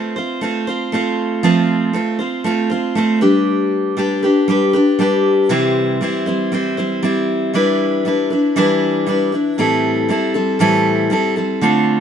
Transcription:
Already playing: A3 C4 F4 C5
0.16 C4 F4 C5
0.41 A3 C4 F4 C5
0.67 C4 F4 C5
0.92 A3 C4 F4 C5
1.43 F3 A3 C4 F4 C5
1.93 A3 C4 F4 C5
2.19 C4 F4 C5
2.44 A3 C4 F4 C5
2.70 C4 F4 C5
2.95 A3 C4 F4 C5
3.21 G3 D4 G4 B4
3.97 G3 D4 G4 B4
4.23 D4 G4 B4
4.48 G3 D4 G4 B4
4.73 D4 G4 B4
4.99 G3 D4 G4 B4
5.49 C3 E3 G3 C4 E4 C5
6.01 G3 C4 E4 C5
6.26 G3 C4 E4 C5
6.52 G3 C4 E4 C5
6.77 G3 C4 E4 C5
7.03 G3 C4 E4 C5
7.54 E3 G3 D4 E4 B4
8.05 G3 D4 E4 B4
8.30 D4 E4 B4
8.56 E3 G3 D4 E4 B4
9.06 G3 D4 E4 B4
9.32 D4 E4 B4
9.58 A2 E3 G3 C4 E4 A4
10.09 G3 C4 E4 A4
10.34 G3 C4 E4 A4
10.59 A2 E3 G3 C4 E4 A4
11.10 G3 C4 E4 A4
11.36 G3 C4 E4 A4
11.61 D3 A3 C4 F4 A4

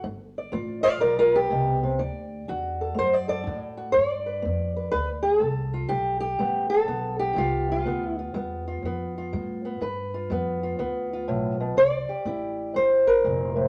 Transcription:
Already playing: A4
0.04 G1 G2
0.38 D5
0.52 A1 B3 F4
0.83 F4 D5 F5
1.00 B1 G2 A#4 D5
1.19 F4 A#4
1.35 B3 G4
1.50 C2 B2
1.83 C3
1.99 D2 D3 D5
2.48 E2 D4 F#4
2.81 A4
2.94 F#2 A3
2.99 C5
3.13 D5
3.28 A4 D5
3.44 A2 D4
3.77 F#4
3.92 G2 C#5
3.97 G2
4.10 D5
4.26 B4
4.42 F2 B3
4.76 B4
4.91 D2 G2 B4
5.23 G#4
5.40 C2 B3 A4
5.74 F4
5.89 B1 G2 G4
6.20 G4
6.39 A1 G3 B3
6.70 A4
6.88 B1 D3 B3
7.19 G4
7.33 C2 G3 E4
7.38 F4
7.72 F4
7.86 D2 G2 B3
8.07 E4
8.19 F4
8.34 E2 G3 B3
8.68 F4
8.82 F2 D3 B3
9.18 F4
9.33 A2 G3
9.65 B3
9.81 G2 B4
10.14 F4
10.30 F2 G3 B3
10.63 F4
10.79 D2 D3 B3
11.13 F4
11.28 B1 A2
11.60 B2
11.77 C2 C3 D5
12.09 G4, muted upright bass stroke
12.25 A1 C4 E4
12.74 G1 G2 C5
13.07 A#4
13.24 F1 A#2
13.56 A2

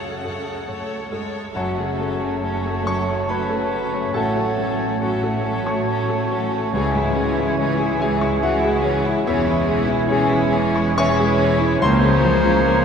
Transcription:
Already playing: F#2 C#3 A3 A4 C#5 F#5
0.24 F#2 A4 C#5
0.67 F#2 A3 A4 C#5
1.10 F#2 G#3 A4 C#5
1.54 F#1 F#2 F#3 A3 C#4 F#4 A4 C#5 F#5 A5
1.75 C#3 A3 F#4
1.98 F#3 A3 C#4 A4
2.20 A3 C#4 F#4
2.43 F#3 C#4 A4 C#5
2.65 A3 F#4 A4
2.85 F#3 C#4 A4 C#5 C#6
3.08 A3 F#4 C#6
3.29 F#3 C#4 A4 B4 C#5 B5
3.50 A3 F#4 A4
3.71 F#3 C#4 A4 C#5
3.92 A3 C#4 F#4
4.14 A1 A2 F#3 A3 C#4 F#4 A4 C#5 F#5 A5
4.35 F#3 A3 F#4
4.57 F#3 A3 C#4 A4
4.79 A3 C#4 F#4
5.00 F#3 A3 C#4 F#4 A4 C#5 F#5 A5
5.23 A3 F#4 A4
5.45 F#3 C#4 A4 C#5
5.66 A3 F#4 C#6
5.88 F#3 C#4 A4 C#5
6.09 A3 F#4 A4
6.31 F#3 C#4 A4 C#5
6.52 A3 C#4 F#4
6.73 C#2 E3 G#3 C#4 G#4 C#5 G#5
6.94 G#2 G#3 E4
7.16 E3 G#3 C#4 G#4
7.37 G#3 E4
7.57 E3 C#4 G#4 C#5
7.79 G#3 E4 G#4
8.00 E3 C#4 G#4 E5 G#5
8.21 G#3 E4 C#6
8.42 E3 C#4 F#4 G#4 E5 F#5
8.63 G#3 E4 G#4
8.84 E3 C#4 G#4 C#5
9.05 G#3 E4
9.25 E1 E2 E3 G#3 C#4 E4 G#4 C#5 E5 G#5
9.46 E3 G#3 E4
9.67 E3 G#3 C#4 G#4
9.87 G#3 E4
10.08 E3 G#3 C#4 G#4 C#5 G#5
10.29 G#3 E4 G#4
10.51 E3 C#4 G#4 E5
10.74 G#3 E4 C#6
10.95 E3 G#3 C#4 G#4 C#5 E5 G#5 C#6
10.99 C#5
11.16 G#3 E4 G#4
11.37 E3 C#4
11.41 G#4 C#5
11.59 G#3 E4
11.79 C#2 F3 A#3 C#4 F4 C5 C#5 A#5 C6
12.02 C#3 F3 C#4 F4
12.23 F3 A#3 C#4
12.44 F3 C#4 F4
12.64 A#3 C#4 A#4

